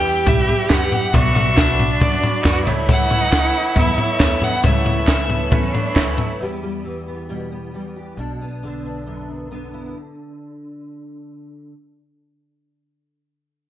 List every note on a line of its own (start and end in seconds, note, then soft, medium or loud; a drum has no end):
0.00 0.23 E2 loud
0.00 1.10 E2 medium
0.00 1.11 E3 medium
0.00 0.26 G3 medium
0.00 0.27 B3 medium
0.00 0.27 E4 medium
0.00 1.10 G4 loud
0.00 1.13 G4 medium
0.00 0.28 B4 medium
0.00 0.28 E5 loud
0.00 1.13 E5 medium
0.00 0.29 G5 loud
0.00 1.13 B5 medium
0.05 0.16 E3 medium
0.05 0.17 G3 medium
0.05 0.15 B3 medium
0.05 0.14 G4 medium
0.15 0.38 E3 soft
0.15 0.37 B3 medium
0.15 0.35 G4 medium
0.26 0.48 B1 loud
0.26 0.67 G3 medium
0.26 0.67 B3 medium
0.26 0.67 E4 medium
0.26 0.67 B4 medium
0.26 0.69 E5 loud
0.26 0.68 E5 medium
0.26 kick loud
0.26 floor tom loud
0.36 0.47 E3 soft
0.36 0.48 G3 medium
0.36 0.49 B3 medium
0.36 0.48 G4 medium
0.48 0.59 E3 medium
0.48 0.60 G3 medium
0.48 0.59 B3 medium
0.48 0.58 G4 medium
0.48 floor tom medium
0.59 0.70 E3 soft
0.59 0.70 G3 soft
0.59 0.71 B3 medium
0.59 0.71 G4 medium
0.69 0.92 E2 medium
0.69 1.12 F#2 medium
0.69 0.93 B2 medium
0.69 0.90 E3 medium
0.69 0.92 G3 medium
0.69 1.10 B3 medium
0.69 0.92 B3 medium
0.69 1.10 E4 medium
0.69 1.10 G4 medium
0.69 0.93 G4 medium
0.69 1.11 B4 medium
0.69 1.11 E5 medium
0.69 1.16 F#5 loud
0.69 kick loud
0.69 snare loud
0.69 clap loud
0.91 1.14 E3 medium
0.91 1.15 G3 medium
0.91 1.14 B3 medium
0.91 1.16 G4 medium
0.91 floor tom medium
1.13 2.63 B1 medium
1.13 1.98 B1 loud
1.13 2.63 B2 medium
1.13 1.47 B2 medium
1.13 1.54 F#3 loud
1.13 1.48 F#3 medium
1.13 1.54 B3 medium
1.13 1.48 B3 medium
1.13 1.54 D4 medium
1.13 1.47 D4 loud
1.13 1.59 F#4 loud
1.13 2.66 F#4 medium
1.13 1.45 F#4 medium
1.13 1.54 B4 medium
1.13 1.55 D5 loud
1.13 2.66 D5 medium
1.13 2.02 E5 loud
1.13 6.36 B5 loud
1.13 kick loud
1.13 floor tom loud
1.36 floor tom loud
1.46 1.57 B3 medium
1.46 1.58 D4 medium
1.46 1.57 F#4 medium
1.57 1.79 B2 medium
1.57 1.98 F#3 medium
1.57 1.77 F#3 medium
1.57 1.98 B3 medium
1.57 1.79 B3 medium
1.57 2.46 D4 loud
1.57 1.98 D4 medium
1.57 1.79 D4 medium
1.57 1.81 F#4 medium
1.57 1.98 B4 medium
1.57 1.99 D5 medium
1.57 kick loud
1.57 snare loud
1.57 clap medium
1.79 1.90 F#3 medium
1.79 1.91 B3 medium
1.79 1.90 D4 medium
1.79 1.88 F#4 medium
1.79 floor tom medium
1.89 2.13 B3 soft
1.89 2.12 D4 soft
1.89 2.10 F#4 medium
2.01 2.22 F#2 loud
2.01 2.41 F#3 medium
2.01 2.41 B3 medium
2.01 2.42 D4 medium
2.01 2.42 B4 medium
2.01 2.63 D5 medium
2.01 2.42 D5 medium
2.01 kick loud
2.01 floor tom loud
2.11 2.23 B3 soft
2.11 2.24 D4 medium
2.11 2.23 F#4 medium
2.23 2.44 F#3 medium
2.23 2.44 B3 medium
2.23 2.44 D4 medium
2.23 2.45 F#4 medium
2.23 floor tom loud
2.44 2.66 F#2 loud
2.44 2.67 B2 medium
2.44 2.66 F#3 medium
2.44 2.67 F#3 medium
2.44 2.67 B3 medium
2.44 2.67 D4 medium
2.44 2.65 F#4 loud
2.44 2.68 F#4 loud
2.44 2.66 B4 medium
2.44 2.68 D5 medium
2.44 kick loud
2.44 snare loud
2.44 clap loud
2.66 3.50 C#2 loud
2.66 4.38 C#2 medium
2.66 4.38 C#3 medium
2.66 2.88 E3 medium
2.66 2.88 A3 medium
2.66 3.27 A3 loud
2.66 2.88 B3 medium
2.66 3.27 C#4 medium
2.66 5.03 E4 loud
2.66 3.28 E4 medium
2.66 2.89 E4 medium
2.66 6.36 A4 medium
2.66 3.28 B4 medium
2.66 6.36 C#5 medium
2.66 3.28 C#5 loud
2.66 floor tom medium
2.87 3.21 C#3 medium
2.87 3.22 E3 medium
2.87 3.22 A3 loud
2.87 3.21 B3 medium
2.87 3.19 E4 medium
2.87 3.73 F#5 loud
2.87 kick loud
2.87 floor tom loud
3.11 floor tom loud
3.21 3.32 A3 medium
3.21 3.32 B3 medium
3.21 3.32 E4 medium
3.31 3.54 C#3 medium
3.31 3.53 E3 medium
3.31 3.73 A3 medium
3.31 3.54 A3 medium
3.31 3.55 B3 medium
3.31 3.73 C#4 medium
3.31 3.73 E4 medium
3.31 3.55 E4 medium
3.31 3.73 B4 medium
3.31 3.73 C#5 medium
3.31 kick loud
3.31 snare loud
3.31 clap medium
3.54 3.87 E3 medium
3.54 3.88 A3 medium
3.54 3.87 B3 medium
3.54 3.85 E4 medium
3.76 3.97 E2 loud
3.76 4.16 A3 medium
3.76 4.17 C#4 medium
3.76 4.17 E4 medium
3.76 4.17 B4 medium
3.76 4.17 E5 medium
3.76 4.45 E5 loud
3.76 kick loud
3.76 floor tom loud
3.87 3.97 A3 medium
3.87 3.98 B3 medium
3.87 3.98 E4 medium
3.97 4.19 E3 medium
3.97 4.19 A3 medium
3.97 4.20 B3 medium
3.97 4.21 E4 medium
3.97 floor tom medium
4.19 4.62 E2 medium
4.19 4.42 C#3 medium
4.19 4.40 E3 medium
4.19 4.60 A3 medium
4.19 4.41 A3 medium
4.19 4.43 B3 medium
4.19 4.60 C#4 medium
4.19 4.60 E4 medium
4.19 4.43 E4 medium
4.19 4.60 B4 medium
4.19 4.61 C#5 medium
4.19 kick loud
4.19 snare loud
4.19 clap loud
4.41 6.14 C#2 medium
4.41 6.14 C#3 medium
4.41 4.63 E3 medium
4.41 4.63 A3 medium
4.41 4.64 B3 medium
4.41 4.64 E4 medium
4.41 4.64 F#5 loud
4.41 floor tom medium
4.64 5.48 C#2 loud
4.64 4.97 C#3 medium
4.64 4.97 E3 medium
4.64 5.04 A3 loud
4.64 4.97 A3 medium
4.64 4.98 B3 loud
4.64 5.04 C#4 loud
4.64 5.05 E4 medium
4.64 4.96 E4 medium
4.64 5.05 B4 medium
4.64 5.05 C#5 loud
4.64 5.92 E5 loud
4.64 kick loud
4.64 floor tom loud
4.86 floor tom medium
4.97 5.08 A3 soft
4.97 5.09 B3 medium
4.97 5.08 E4 medium
5.07 5.30 C#3 medium
5.07 5.29 E3 medium
5.07 5.48 A3 medium
5.07 5.31 A3 medium
5.07 5.31 B3 medium
5.07 5.18 C#4 medium
5.07 5.48 C#4 medium
5.07 5.48 E4 medium
5.07 5.31 E4 medium
5.07 5.48 B4 medium
5.07 5.48 C#5 medium
5.07 kick loud
5.07 snare loud
5.07 clap loud
5.29 5.63 E3 medium
5.29 5.64 A3 medium
5.29 5.52 B3 medium
5.29 5.63 B3 medium
5.29 floor tom medium
5.34 5.61 E4 medium
5.51 5.73 E2 medium
5.51 5.92 A3 medium
5.51 5.74 C#4 medium
5.51 5.92 C#4 medium
5.51 5.92 E4 medium
5.51 5.92 B4 medium
5.51 5.92 C#5 loud
5.51 kick loud
5.51 floor tom loud
5.62 5.74 A3 medium
5.62 5.74 B3 medium
5.62 5.73 E4 medium
5.72 5.96 E3 medium
5.72 5.96 A3 medium
5.72 5.97 B3 medium
5.72 5.97 D4 medium
5.72 floor tom medium
5.77 5.97 E4 medium
5.94 6.38 D2 medium
5.94 6.18 C#3 medium
5.94 6.17 E3 medium
5.94 6.35 A3 medium
5.94 6.18 A3 medium
5.94 6.36 C#4 medium
5.94 6.39 E4 medium
5.94 6.36 E4 medium
5.94 6.36 B4 medium
5.94 6.36 C#5 loud
5.94 kick loud
5.94 snare loud
5.94 clap loud
5.98 6.19 B3 loud
5.98 6.19 E4 loud
6.18 6.40 E3 medium
6.18 6.40 A3 medium
6.18 6.41 B3 medium
6.18 6.42 E4 medium
6.18 floor tom medium
6.40 8.14 E2 medium
6.40 6.83 E3 medium
6.40 6.61 G3 medium
6.40 7.08 B3 medium
6.40 7.95 G4 medium
6.63 7.28 G3 medium
6.84 7.73 E3 medium
7.08 7.51 B3 medium
7.29 7.73 B2 medium
7.29 7.73 G3 medium
7.52 8.18 B3 soft
7.74 8.15 E3 medium
7.74 8.18 G3 medium
7.96 8.15 G4 soft
8.17 9.91 B1 medium
8.17 8.62 B2 medium
8.17 8.84 D4 medium
8.41 9.06 B3 soft
8.63 9.50 D3 medium
8.85 9.29 D4 soft
9.06 9.92 F#2 medium
9.06 9.50 B3 medium
9.30 9.93 D4 soft
9.51 11.73 D3 soft
9.51 9.93 B3 soft
9.74 9.95 E4 soft